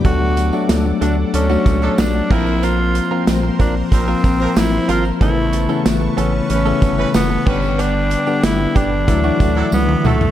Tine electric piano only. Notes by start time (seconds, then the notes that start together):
Already playing: B3 G4
0.04 F#3 A3 D4
0.53 F#3 A3 D4
1.49 F#3 A3 F#4
2.30 F3 A#3 C4
3.11 F3 A#3 C4
4.08 F3 A#3 C4
5.21 C#3 E3 A3 B3 E4
5.69 C#3 E3 A3 B3 E4
6.66 C#3 E3 A3 B3 E4
7.46 D3 G3 B3
8.27 D3 G3 B3
9.07 D3 E3 F#3 A3 E4
9.23 E3 F#3 A3 D4 E4